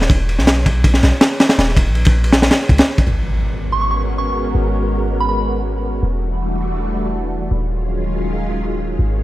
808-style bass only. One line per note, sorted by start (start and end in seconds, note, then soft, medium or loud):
0.10 0.40 E1 loud
0.39 1.02 B1 loud
1.03 1.12 B1 medium
1.59 1.89 D#1 loud
1.87 2.50 A#1 loud
2.69 2.78 C#2 medium
3.07 4.53 G#1 medium
4.55 6.01 G#1 medium
6.03 7.49 E1 medium
7.51 8.98 D#1 medium
8.99 9.23 G#1 medium